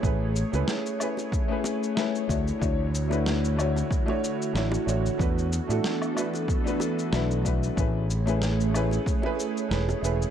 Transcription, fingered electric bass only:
X:1
M:4/4
L:1/16
Q:"Swing 16ths" 1/4=93
K:A
V:1 name="Fingered electric bass" clef=bass
A,,,2 z C,, z8 z2 D,, z | D,,6- D,, z4 z A,,, z A,,, z | E,,2 z A,, z8 B,,,3 z | A,,,6- A,,, z4 z E,,, z E,,, z |]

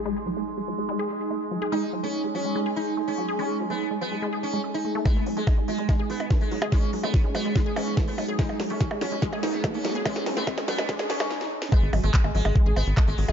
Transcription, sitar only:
X:1
M:4/4
L:1/16
Q:1/4=144
K:G#phr
V:1 name="Sitar"
z16 | D2 z C2 z C2 z2 D2 z C2 z | C2 z B,2 z B,2 z2 C2 z D2 z | B,2 z G,2 z G,2 z2 B,2 z G,2 z |
C2 z B,2 z B,2 z2 C2 z B,2 z | D2 z C2 z C2 z2 D2 z C2 z | C2 z B,2 z B,2 z2 C2 z4 | B,2 z G,2 z G,2 z2 B,2 z G,2 z |]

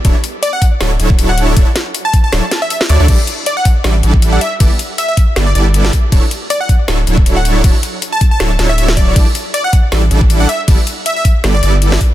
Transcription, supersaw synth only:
X:1
M:4/4
L:1/16
Q:"Swing 16ths" 1/4=158
K:D
V:1 name="Supersaw synth"
[F,DEAc] z6 z [F,DEAc] z [F,DEAc]6 | [F,DEAc] z6 z [F,DEAc] z4 z [F,DEAc] [F,DEAc] | [G,DEAd] z6 z [G,DEAd] z [G,DEAd]4 z2 | [G,B,EAd] z6 z [G,B,EAd] z [G,B,EAd]4 z2 |
[F,DEAc] z6 z [F,DEAc] z [F,DEAc]6 | [F,DEAc] z6 z [F,DEAc] z [F,DEAc]6 | [G,DEAd] z6 z [G,DEAd] z [G,DEAd]4 z2 | [G,B,EAd] z6 z [G,B,EAd] z [G,B,EAd]4 z2 |]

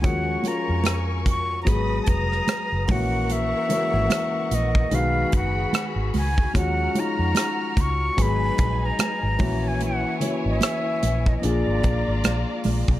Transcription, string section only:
X:1
M:4/4
L:1/8
Q:"Swing 16ths" 1/4=74
K:Ebm
V:1 name="String section"
[Bad']4 [ce'b']3 [Bgd']- | [Bgd']4 [^F^G=b]4 | [Gbf']4 [Eca]3 [_Fda]- | [_Fda]4 [=F=db]4 |]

